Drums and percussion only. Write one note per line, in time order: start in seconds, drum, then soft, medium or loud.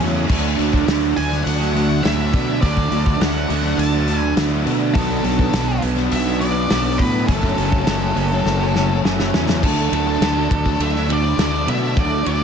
0.00 open hi-hat medium
0.30 kick loud
0.30 crash loud
0.59 open hi-hat medium
0.73 kick medium
0.88 snare loud
0.88 open hi-hat medium
1.17 open hi-hat medium
1.33 snare soft
1.47 open hi-hat medium
1.76 open hi-hat medium
2.05 snare loud
2.05 open hi-hat medium
2.34 kick loud
2.34 open hi-hat medium
2.63 kick loud
2.63 open hi-hat medium
2.77 kick medium
2.92 open hi-hat medium
3.06 kick medium
3.21 snare loud
3.21 open hi-hat medium
3.50 open hi-hat medium
3.79 open hi-hat medium
4.08 open hi-hat medium
4.37 snare loud
4.37 open hi-hat medium
4.67 open hi-hat medium
4.95 kick loud
4.95 open hi-hat medium
5.24 open hi-hat medium
5.39 kick medium
5.53 snare loud
5.53 open hi-hat loud
5.82 open hi-hat medium
5.97 snare soft
6.12 open hi-hat medium
6.41 open hi-hat medium
6.70 snare loud
6.70 open hi-hat medium
6.99 kick medium
6.99 open hi-hat medium
7.29 kick loud
7.29 open hi-hat medium
7.43 kick medium
7.58 open hi-hat medium
7.72 kick medium
7.87 snare loud
7.87 open hi-hat medium
8.17 open hi-hat medium
8.46 snare medium
8.76 snare medium
9.05 snare medium
9.20 snare medium
9.34 snare loud
9.49 snare loud
9.63 kick loud
9.63 crash loud
9.93 ride medium
10.22 snare loud
10.22 ride loud
10.51 kick loud
10.51 ride medium
10.66 kick medium
10.80 ride loud
10.96 snare soft
11.10 ride medium
11.39 snare loud
11.39 ride loud
11.68 ride medium
11.97 kick loud
11.97 ride loud
12.26 ride medium